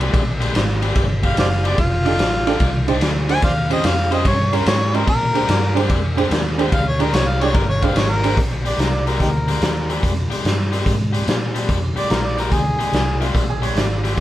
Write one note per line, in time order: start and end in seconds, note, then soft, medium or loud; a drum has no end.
0.00 0.12 C2 medium
0.00 0.22 A#2 medium
0.00 0.22 G#3 medium
0.00 0.22 D4 medium
0.00 0.21 G4 medium
0.00 ride medium
0.14 0.53 A#1 medium
0.14 kick loud
0.14 ride medium
0.40 0.63 A#2 medium
0.40 0.63 G#3 medium
0.40 0.63 D4 medium
0.40 0.62 G4 loud
0.40 ride medium
0.55 0.95 G#1 medium
0.55 snare loud
0.55 ride medium
0.82 1.04 A#2 medium
0.82 1.04 G#3 medium
0.82 1.04 D4 medium
0.82 1.04 G4 medium
0.82 ride medium
0.95 1.36 G1 medium
0.95 kick loud
0.95 ride medium
1.23 1.46 A#2 medium
1.23 1.46 G#3 medium
1.23 1.45 D4 medium
1.23 1.45 G4 medium
1.23 1.38 F5 medium
1.23 kick medium
1.23 ride medium
1.37 1.77 F#1 medium
1.37 1.48 C5 medium
1.37 1.48 D5 medium
1.37 1.68 F5 medium
1.37 snare loud
1.37 ride medium
1.64 1.78 A#2 medium
1.64 1.78 G#3 medium
1.64 1.78 D4 medium
1.64 1.78 G4 medium
1.64 1.78 D5 medium
1.64 ride medium
1.78 2.18 F1 medium
1.78 2.99 F4 loud
1.78 kick loud
1.78 ride medium
2.05 2.28 F3 medium
2.05 2.12 D4 medium
2.05 2.13 D#4 medium
2.05 2.28 D#4 medium
2.05 2.13 G4 medium
2.05 2.28 A4 medium
2.05 2.13 A4 medium
2.05 2.27 D5 loud
2.05 ride medium
2.19 2.59 A1 medium
2.19 snare loud
2.19 ride medium
2.47 2.69 F3 medium
2.47 2.54 D4 medium
2.47 2.54 D#4 medium
2.47 2.69 D#4 medium
2.47 2.54 G4 medium
2.47 2.54 A4 loud
2.47 2.69 A4 medium
2.47 2.69 D5 medium
2.47 snare soft
2.47 ride medium
2.60 3.00 C2 medium
2.60 kick loud
2.60 ride medium
2.88 3.11 F3 medium
2.88 2.95 D4 medium
2.88 2.95 D#4 medium
2.88 3.10 D#4 medium
2.88 2.95 G4 medium
2.88 3.10 A4 medium
2.88 2.95 C5 loud
2.88 3.10 D5 loud
2.88 ride medium
3.01 3.41 D2 medium
3.01 snare loud
3.01 ride medium
3.29 3.43 F3 medium
3.29 3.36 D4 medium
3.29 3.36 D#4 medium
3.29 3.43 D#4 medium
3.29 3.36 G4 medium
3.29 3.43 A4 medium
3.29 3.36 C5 medium
3.29 3.43 D5 medium
3.29 3.43 G#5 loud
3.29 ride medium
3.42 3.83 D#2 medium
3.42 3.52 C5 medium
3.42 3.52 D5 medium
3.42 3.70 F5 loud
3.42 kick loud
3.42 ride medium
3.70 3.93 D#3 medium
3.70 3.77 C#4 medium
3.70 3.93 C#4 medium
3.70 3.77 F4 medium
3.70 3.77 G4 medium
3.70 3.92 G4 loud
3.70 3.92 C5 medium
3.70 3.77 C5 medium
3.70 3.87 D#5 medium
3.70 ride medium
3.84 4.24 F2 medium
3.84 4.11 F5 loud
3.84 snare loud
3.84 ride medium
4.11 4.34 D#3 medium
4.11 4.18 C#4 medium
4.11 4.34 C#4 medium
4.11 4.18 F4 medium
4.11 4.18 G4 medium
4.11 4.34 G4 medium
4.11 4.18 C5 medium
4.11 4.33 C5 medium
4.11 4.26 D#5 medium
4.11 ride medium
4.25 4.65 G2 medium
4.25 4.56 C#5 loud
4.25 kick loud
4.25 ride medium
4.52 4.75 D#3 medium
4.52 4.59 C#4 medium
4.52 4.75 C#4 medium
4.52 4.59 F4 medium
4.52 4.59 G4 medium
4.52 4.75 G4 medium
4.52 4.67 A#4 medium
4.52 4.75 C5 loud
4.52 4.60 C#5 medium
4.52 ride medium
4.66 5.06 G#2 loud
4.66 4.94 C#5 loud
4.66 snare loud
4.66 ride medium
4.94 5.08 D#3 medium
4.94 5.01 C#4 medium
4.94 5.08 C#4 medium
4.94 5.01 F4 medium
4.94 5.01 G4 medium
4.94 5.08 G4 medium
4.94 5.08 A#4 medium
4.94 5.07 C5 medium
4.94 5.01 D#5 medium
4.94 ride medium
5.07 5.48 A#2 loud
5.07 5.88 A#4 loud
5.07 kick loud
5.07 ride medium
5.34 5.58 A#2 medium
5.34 5.57 G#3 medium
5.34 5.42 D4 medium
5.34 5.57 D4 medium
5.34 5.42 G4 medium
5.34 5.57 G4 loud
5.34 5.42 G#4 medium
5.34 5.42 C5 medium
5.34 ride medium
5.49 5.89 G2 medium
5.49 snare loud
5.49 ride medium
5.75 5.99 A#2 medium
5.75 5.98 G#3 medium
5.75 5.82 D4 medium
5.75 5.98 D4 medium
5.75 5.83 G4 medium
5.75 5.98 G4 medium
5.75 5.83 G#4 medium
5.75 5.83 C5 loud
5.75 snare soft
5.75 ride medium
5.89 6.30 F2 medium
5.89 kick loud
5.89 ride medium
6.17 6.40 A#2 medium
6.17 6.40 G#3 medium
6.17 6.24 D4 loud
6.17 6.40 D4 loud
6.17 6.24 G4 medium
6.17 6.39 G4 loud
6.17 6.24 G#4 medium
6.17 6.24 C5 loud
6.17 ride medium
6.31 6.71 D#2 loud
6.31 snare loud
6.31 ride medium
6.58 6.81 A#2 medium
6.58 6.81 G#3 medium
6.58 6.65 D4 medium
6.58 6.81 D4 medium
6.58 6.65 G4 medium
6.58 6.80 G4 medium
6.58 6.66 G#4 medium
6.58 6.66 C5 loud
6.58 ride medium
6.72 7.12 D2 loud
6.72 6.86 F5 loud
6.72 kick loud
6.72 ride medium
6.88 7.03 C#5 medium
6.99 7.22 A#2 medium
6.99 7.22 G#3 loud
6.99 7.07 D4 medium
6.99 7.22 D4 medium
6.99 7.22 G4 loud
6.99 7.07 G4 medium
6.99 7.07 G#4 medium
6.99 7.16 A#4 loud
6.99 7.07 D5 medium
6.99 ride medium
7.13 7.53 C2 medium
7.13 7.29 C#5 medium
7.13 snare loud
7.13 ride medium
7.28 7.44 F5 medium
7.41 7.64 A#2 medium
7.41 7.63 G#3 medium
7.41 7.63 D4 medium
7.41 7.48 D4 medium
7.41 7.63 G4 medium
7.41 7.48 G4 medium
7.41 7.49 G#4 medium
7.41 7.57 C#5 medium
7.41 7.49 D5 medium
7.41 ride medium
7.54 7.95 G1 medium
7.54 7.68 A#4 medium
7.54 kick loud
7.54 ride medium
7.69 7.85 C#5 medium
7.82 8.05 A#2 medium
7.82 8.05 G#3 medium
7.82 8.04 D4 loud
7.82 7.90 D4 medium
7.82 8.04 G4 medium
7.82 7.90 G4 medium
7.82 7.90 G#4 medium
7.82 7.90 C5 medium
7.82 7.99 F5 medium
7.82 kick medium
7.82 ride medium
7.96 8.36 G#1 medium
7.96 8.12 C#5 medium
7.96 snare loud
7.96 ride medium
8.11 8.37 A#4 loud
8.23 8.38 A#2 medium
8.23 8.37 G#3 medium
8.23 8.37 D4 medium
8.23 8.31 D4 medium
8.23 8.37 G4 medium
8.23 8.31 G4 medium
8.23 8.31 G#4 medium
8.23 8.31 C5 medium
8.23 ride medium
8.37 8.77 A#1 medium
8.37 kick loud
8.37 closed hi-hat medium
8.65 8.87 A#2 medium
8.65 8.87 G#3 medium
8.65 8.87 D4 medium
8.65 8.87 G4 loud
8.65 8.82 D5 medium
8.65 closed hi-hat medium
8.78 9.19 C2 medium
8.78 8.96 A#4 medium
8.78 snare loud
8.78 closed hi-hat medium
8.95 9.06 D5 medium
9.07 9.29 A#2 medium
9.07 9.29 G#3 medium
9.07 9.29 D4 medium
9.07 9.29 G4 medium
9.07 9.20 A#4 medium
9.07 snare soft
9.07 closed hi-hat medium
9.20 9.60 D2 medium
9.20 9.29 D#4 medium
9.20 9.29 G4 medium
9.20 10.01 A#4 medium
9.20 kick loud
9.20 closed hi-hat medium
9.48 9.70 A#2 medium
9.48 9.70 G#3 medium
9.48 9.70 D4 medium
9.48 9.70 G4 medium
9.48 closed hi-hat medium
9.61 10.02 D#2 medium
9.61 snare loud
9.61 closed hi-hat medium
9.90 10.12 A#2 medium
9.90 10.12 G#3 medium
9.90 10.11 D4 medium
9.90 10.11 G4 medium
9.90 closed hi-hat medium
10.03 10.29 F2 medium
10.03 kick loud
10.03 closed hi-hat medium
10.30 10.53 A#2 medium
10.30 10.53 G#3 medium
10.30 10.53 D4 medium
10.30 10.52 G4 loud
10.30 muted fingered electric bass stroke soft
10.30 closed hi-hat medium
10.44 10.84 G2 medium
10.44 snare loud
10.44 closed hi-hat medium
10.72 10.94 A#2 medium
10.72 10.94 G#3 medium
10.72 10.94 D4 medium
10.72 10.94 G4 medium
10.72 closed hi-hat medium
10.86 11.26 G#2 medium
10.86 kick loud
10.86 closed hi-hat medium
11.13 11.36 A#2 medium
11.13 11.36 G#3 medium
11.13 11.35 D4 medium
11.13 11.35 G4 medium
11.13 closed hi-hat medium
11.27 11.67 A#2 medium
11.27 snare loud
11.27 closed hi-hat medium
11.54 11.77 A#2 medium
11.54 11.77 G#3 medium
11.54 11.77 D4 medium
11.54 11.77 G4 medium
11.54 closed hi-hat medium
11.69 11.95 F2 medium
11.69 kick loud
11.69 closed hi-hat medium
11.96 12.19 A#2 medium
11.96 12.19 G#3 medium
11.96 12.18 D4 medium
11.96 12.18 G4 medium
11.96 12.14 D5 medium
11.96 muted fingered electric bass stroke soft
11.96 closed hi-hat medium
12.10 12.50 A#1 medium
12.10 12.27 A#4 medium
12.10 snare loud
12.10 closed hi-hat medium
12.26 12.38 D5 medium
12.38 12.60 A#2 medium
12.38 12.60 G#3 medium
12.38 12.60 D4 medium
12.38 12.60 G4 medium
12.38 12.54 A#4 medium
12.38 closed hi-hat medium
12.52 12.78 D2 medium
12.52 13.33 G#4 medium
12.52 kick loud
12.52 closed hi-hat medium
12.79 13.02 A#2 medium
12.79 13.01 G#3 medium
12.79 13.01 D4 medium
12.79 13.01 G4 medium
12.79 muted fingered electric bass stroke soft
12.79 closed hi-hat medium
12.93 13.33 C2 medium
12.93 snare loud
12.93 closed hi-hat medium
13.20 13.43 A#2 medium
13.20 13.43 G#3 medium
13.20 13.43 D4 medium
13.20 13.47 F4 medium
13.20 13.42 G4 medium
13.20 closed hi-hat medium
13.35 13.75 A#1 medium
13.35 kick loud
13.35 closed hi-hat medium
13.49 13.62 G#4 medium
13.62 13.85 A#2 medium
13.62 13.84 G#3 medium
13.62 13.84 D4 medium
13.62 13.84 G4 medium
13.62 13.76 C#5 medium
13.62 closed hi-hat medium
13.76 14.16 G#1 medium
13.76 14.10 D5 medium
13.76 snare loud
13.76 closed hi-hat medium
14.04 14.20 A#2 medium
14.04 14.20 G#3 medium
14.04 14.20 D4 medium
14.04 14.20 G4 medium
14.04 snare soft
14.04 closed hi-hat medium